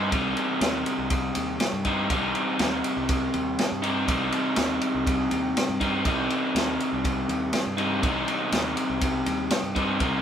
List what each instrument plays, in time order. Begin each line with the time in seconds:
Already playing: fingered electric bass G2, overdriven electric guitar C3 G3 C4 D#4
0.11 fingered electric bass C2, overdriven electric guitar C3 G3 C4 D#4, kick, ride
0.37 ride
0.61 fingered electric bass D#2, snare, ride
0.86 ride
0.98 fingered electric bass C2
1.10 kick, ride
1.35 fingered electric bass D#2, ride
1.60 snare, ride
1.73 fingered electric bass G2
1.85 overdriven electric guitar C3 G3 C4 D#4, kick, ride
2.10 fingered electric bass C2, overdriven electric guitar C3 G3 C4 D#4, kick, ride
2.35 ride
2.59 fingered electric bass D#2, snare, ride
2.84 ride
2.97 fingered electric bass C2
3.09 kick, ride
3.34 fingered electric bass D#2, ride
3.59 snare, ride
3.72 fingered electric bass G2
3.82 overdriven electric guitar C3 G3 C4 D#4, ride
4.07 fingered electric bass C2, overdriven electric guitar C3 G3 C4 D#4, kick, ride
4.32 ride
4.56 fingered electric bass D#2, snare, ride
4.81 ride
4.94 fingered electric bass C2
5.07 kick, ride
5.31 fingered electric bass D#2, ride
5.57 snare, ride
5.69 fingered electric bass G2
5.80 overdriven electric guitar C3 G3 C4 D#4, kick, ride
6.05 fingered electric bass C2, overdriven electric guitar C3 G3 C4 D#4, kick, ride
6.30 ride
6.55 fingered electric bass D#2, snare, ride
6.80 ride
6.92 fingered electric bass C2
7.04 kick, ride
7.28 fingered electric bass D#2, ride
7.53 snare, ride
7.66 fingered electric bass G2
7.78 overdriven electric guitar C3 G3 C4 D#4, ride
8.03 fingered electric bass C2, overdriven electric guitar C3 G3 C4 D#4, kick, ride
8.28 ride
8.52 fingered electric bass D#2, snare, ride
8.77 ride
8.90 fingered electric bass C2
9.01 kick, ride
9.26 fingered electric bass D#2, ride
9.50 snare, ride
9.63 fingered electric bass G2
9.75 overdriven electric guitar C3 G3 C4 D#4, kick, ride
10.00 fingered electric bass C2, overdriven electric guitar C3 G3 C4 D#4, kick, ride